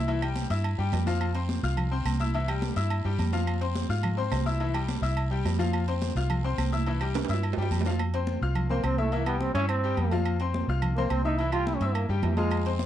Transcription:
Already playing: C2
0.08 E3 E4 E5, high conga, low agogo, long guiro
0.22 G3 G4 G5, low agogo, claves
0.36 high conga, short guiro
0.50 G2 E4 E5 E6, high conga, low agogo, short guiro
0.64 high conga, low agogo, long guiro, claves
0.78 G2 G3 G4 G5, high conga
0.92 F2, high conga, low timbale, low agogo, short guiro
1.06 F3 F4 F5, high conga, low agogo, short guiro
1.20 high conga, low agogo, claves
1.35 C4 C5 C6, high conga, low agogo
1.49 high conga, short guiro
1.63 C2 F4 F5 F6, high conga, short guiro
1.77 high conga, low conga, low agogo, long guiro, claves
1.91 C4 C5 C6, high conga
2.05 C2, high conga, low agogo, short guiro, claves
2.20 E4 E5 E6, high conga, short guiro
2.34 E3 E4 E5, low agogo
2.48 G3 G4 G5, high conga, low agogo, claves
2.62 high conga, short guiro
2.76 G2 E4 E5 E6, high conga, low agogo, short guiro
2.90 high conga, low agogo, long guiro, claves
3.05 G2 G3 G4 G5, high conga
3.19 F2, high conga, low agogo, short guiro
3.33 F3 F4 F5, high conga, low agogo, short guiro
3.47 high conga, low agogo, long guiro, claves
3.61 C4 C5 C6, low agogo
3.75 high conga, short guiro
3.89 G#2 F4 F5 F6, high conga, short guiro
4.03 high conga, low conga, low agogo, long guiro, claves
4.17 C4 C5 C6
4.32 C2, high conga, low timbale, low agogo, short guiro, claves
4.46 E4 E5 E6, high conga, short guiro
4.60 E3 E4 E5, high conga, low agogo, long guiro
4.74 G3 G4 G5, high conga, low agogo, claves
4.89 high conga, short guiro
5.02 C2 E4 E5 E6, high conga, low agogo, short guiro
5.17 high conga, low agogo, claves
5.31 G3 G4 G5, high conga
5.45 F2, high conga, low timbale, low agogo, short guiro
5.59 F3 F4 F5, high conga, low agogo, short guiro
5.73 high conga, low agogo, long guiro, claves
5.88 C4 C5 C6, high conga, low agogo
6.02 high conga, short guiro
6.15 C2 F4 F5 F6, high conga, short guiro
6.30 high conga, low conga, low agogo, long guiro, claves
6.44 C4 C5 C6, high conga
6.58 C2, high conga, low agogo, short guiro, claves
6.72 E4 E5 E6, high conga, short guiro
6.86 E3 E4 E5, high conga, low agogo, long guiro
7.01 G3 G4 G5, high conga, low agogo, claves
7.14 high conga, high timbale, short guiro
7.25 high timbale, short guiro
7.29 G2 E4 E5 E6, high conga, low agogo
7.34 low timbale
7.43 high conga, low agogo, long guiro, claves
7.53 G2, low timbale
7.57 G3 G4 G5, high conga
7.62 low timbale
7.71 F2, high conga, low agogo, short guiro
7.81 low timbale
7.85 F3 F4 F5, high conga, low agogo, short guiro
7.90 low timbale
7.99 high conga, low agogo, claves
8.14 C4 C5 C6, high conga, low agogo
8.27 high conga
8.41 C2 F4 F5 F6, high conga
8.55 high conga, low conga, low agogo, claves
8.70 A#3 C4 C5 C6, high conga, low conga
8.84 C2 C4, high conga, low agogo, claves
8.98 A3 E4 E5 E6, high conga
9.12 E3 A#3 E4 E5, high conga, low agogo
9.26 G3 B3 G4 G5, high conga, low agogo, claves
9.41 C4, high conga
9.54 G2 C#4 E4 E5 E6, high conga, low agogo
9.69 C4, high conga, low agogo, claves
9.83 G3 G4 G5, high conga
9.97 F2, high conga, low agogo
10.11 F3 F4 F5, high conga, low agogo
10.25 high conga, low agogo, claves
10.40 C4 C5 C6, high conga, low agogo
10.54 high conga
10.68 C2 F4 F5 F6, high conga
10.82 high conga, low conga, low agogo, claves
10.96 A#3 C4 C5 C6, high conga, low conga
11.10 C2 C4, high conga, low agogo, claves
11.25 D#4 E4 E5 E6, high conga
11.38 E3 E4 E5, high conga, low agogo
11.52 G3 F4 G4 G5, high conga, low agogo, claves
11.67 E4, high conga
11.76 C#4
11.80 G2 E4 E5 E6, high conga, low agogo
11.86 C4
11.95 A#3, high conga, low agogo, claves
12.09 G2 C#3 G3 G4 G5, high conga
12.23 F2 E3, high conga, low timbale, low agogo
12.37 F3 G#3 F4 F5, high conga, low agogo
12.51 high conga, low agogo, long guiro, claves
12.66 C4 C5 C6, low agogo
12.79 high conga, short guiro

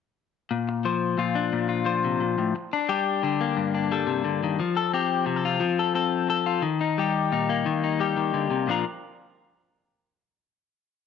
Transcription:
0.51 A#2
0.69 muted clean electric guitar stroke
0.85 F3 C5
1.18 A#2 F4
1.35 D4
1.53 A#2
1.69 F4
1.85 F3 C5
2.04 C3
2.20 A#2
2.38 A2
2.56 muted clean electric guitar stroke
2.73 D4
2.89 G3 G4
3.23 D3 D4
3.41 A#3
3.57 G2
3.75 D4
3.91 G3 A4
4.07 C3
4.25 D3
4.43 D#3
4.60 F3
4.77 A4
4.93 C4 G4
5.26 C3, muted clean electric guitar stroke
5.36 A4
5.45 F4
5.60 F3
5.79 A4
5.95 C4 A4
6.29 A4, muted clean electric guitar stroke
6.46 F4
6.62 D#3
6.81 D#4
6.98 G3 G4
7.32 A#2 D#4
7.49 A#3
7.66 D#3
7.84 D#4
8.00 G3 G4
8.17 D#3
8.34 D3
8.51 C3
8.67 A#2 F3 D4 F4 A#4

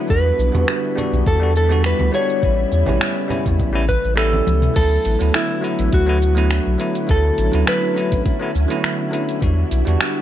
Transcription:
Already playing: D3 B3
0.08 E2 G3 B3 D4 E4 F#4 B4, kick, cabasa
0.39 B1, cabasa
0.52 E2 G3 B3 D4 F#4, high conga, low conga, cabasa
0.68 finger snap, cabasa
0.95 G3 B3 D4 F#4, high bongo, low conga, cabasa
1.13 B1, low conga, cabasa
1.26 E2 A4, kick, high conga, cabasa
1.40 G3 B3 D4 F#4
1.56 A4, cabasa
1.69 G3 B3 D4 F#4, high bongo, cabasa
1.84 B4, finger snap, cabasa
1.99 D2, high conga
2.12 G3 B3 D4 F#4 C#5, high bongo, cabasa
2.30 cabasa
2.41 A1 C#3 G3 A3 B3 C#4 E4, kick, cabasa
2.71 E2, high bongo, cabasa
2.86 A1 G3 B3 C#4 E4, high conga, low conga, cabasa
3.01 finger snap, cabasa
3.28 G3 B3 C#4 E4, high bongo, low conga, cabasa
3.46 E2, kick, low conga, cabasa
3.59 A1, kick, high conga, cabasa
3.73 G3 B3 C#4 E4
3.89 B4, kick, cabasa
4.04 A1, cabasa
4.16 G3 B3 C#4 E4 A4, finger snap, cabasa
4.33 high conga
4.47 C#2, high tom, cabasa
4.62 mid tom, cabasa
4.74 D2 D3 F#3 A3 B3 E4 A4, kick, open hi-hat, crash, cabasa
5.05 A1, open hi-hat, cabasa
5.19 D2 F#3 A3 B3 E4, open hi-hat, cabasa
5.34 E4, finger snap, open hi-hat, cabasa
5.61 F#3 A3 B3 E4, cabasa
5.79 A1, open hi-hat, cabasa
5.92 D2 F#4, kick, open hi-hat, cabasa
6.06 F#3 A3 B3 E4
6.22 cabasa
6.35 F#3 A3 B3 E4, open hi-hat, cabasa
6.51 finger snap, open hi-hat, cabasa
6.67 B1
6.78 F#3 A3 B3 E4, open hi-hat, cabasa
6.95 open hi-hat, cabasa
7.07 D2 F#3 A3 B3 C#4 E4 A4, kick, open hi-hat, cabasa
7.38 A1, open hi-hat, cabasa
7.51 D2 F#3 A3 B3 E4, open hi-hat, cabasa
7.67 B4, finger snap, open hi-hat, cabasa
7.94 F#3 A3 B3 E4, cabasa
8.12 A1, kick, open hi-hat, cabasa
8.26 kick, open hi-hat, cabasa
8.39 F#3 A3 B3 E4
8.55 D2, cabasa
8.68 F#3 A3 B3 E4, open hi-hat, cabasa
8.84 finger snap, open hi-hat, cabasa
9.11 F#3 A3 B3 E4, open hi-hat, cabasa
9.29 open hi-hat, cabasa
9.40 E2 G3 B3 D4 F#4, kick, open hi-hat, cabasa
9.71 B1, open hi-hat, cabasa
9.85 E2 G3 B3 D4 F#4, open hi-hat, cabasa
10.01 finger snap, open hi-hat, cabasa

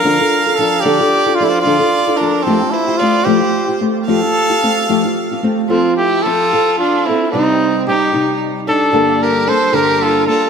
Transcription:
Already playing: A#4 F5
0.04 D3 F3 D4 F4 A4
0.20 F4 A4
0.46 D4 F4 A4
0.55 F3 A4 F5
0.60 D4 F4 A4
0.81 D3 G4 D5
0.85 F3 D4 F4 A4
1.00 D4 F4 A4
1.26 D4 F4 A4
1.35 F4 D5
1.40 F3 D4 F4 A4
1.44 E4 C5
1.49 F4 D5
1.61 F4 D5
1.65 D3 F3 D4 F4 A4
1.79 D4 F4 A4
2.07 D4 F4 A4
2.17 F3 D4 A#4
2.21 F4 A4
2.43 F3 A3 C4 F4 A4
2.47 C4 G4
2.61 C4 F4 G4
2.71 E4 C5
2.88 C4 F4 G4
2.97 A3 F4 D5
3.02 C4 F4 G4
3.24 F3 A3 C4 F4 G4 C5
3.41 C4 F4 G4
3.68 C4 F4 G4
3.81 A3 C4 F4 G4
4.05 F3 A3 C4 A4 F5
4.09 F4 G4
4.24 C4
4.50 C4 F4 G4
4.63 A3 C4 F4 G4
4.89 F3 A3 C4 F4 G4
5.05 C4 F4 G4
5.31 C4 F4 G4
5.43 A3 C4 F4 G4
5.69 F3 C4 F4 A4
5.97 E4 G4
6.22 F3 F4 A4
6.27 C4 F4 A4
6.53 F3 C4 F4 A4
6.79 D4 F4
7.05 C4 E4 A4
7.10 C4 F4
7.30 C3 G3 C4 D#4
7.35 D#4 G4
7.87 G3 C4 D#4 G4
8.13 C3 G3 C4 D#4 G4
8.67 C4 D4 D#4 G4 A4
8.92 G2 D3 G3 A#3 D4 A4
9.23 G4 A#4
9.47 G3 A#3 D4 A4 C5
9.72 G2 D3 G3 A#3 D4 G4 A4 A#4
10.02 F4 A4
10.27 G3 A#3 D4 F4 A4

